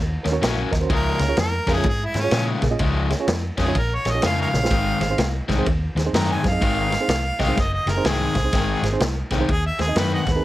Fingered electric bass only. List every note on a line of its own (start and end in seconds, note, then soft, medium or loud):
0.00 0.16 D#2 medium
0.26 0.38 D#2 medium
0.42 0.63 A#1 medium
0.72 0.85 D#2 medium
0.90 1.11 C#2 medium
1.19 1.32 C#2 medium
1.37 1.59 F2 medium
1.67 1.79 F2 medium
1.84 2.06 G#2 medium
2.15 2.27 G#2 medium
2.32 2.53 A#2 medium
2.62 2.75 A#2 medium
2.79 3.13 C#2 medium
3.28 3.49 F2 medium
3.58 3.70 F2 medium
3.75 3.97 A#1 medium
4.06 4.18 A#1 medium
4.23 4.45 F2 medium
4.54 4.66 A#1 medium
4.70 4.92 G#1 medium
5.00 5.13 G#1 medium
5.18 5.39 C2 medium
5.48 5.61 C2 medium
5.66 5.87 D#2 medium
5.95 6.08 D#2 medium
6.13 6.35 F#2 medium
6.44 6.56 F#2 medium
6.61 6.95 G#1 medium
7.08 7.30 C2 medium
7.39 7.52 C2 medium
7.57 7.78 F#1 medium
7.86 7.99 F#1 medium
8.04 8.26 C2 medium
8.35 8.48 C2 medium
8.53 8.74 G#1 medium
8.82 8.95 G#1 medium
9.00 9.22 C2 medium
9.31 9.43 C2 medium
9.49 9.70 D#2 loud
9.79 9.91 D#2 medium
9.96 10.17 F#2 medium
10.26 10.39 D#2 medium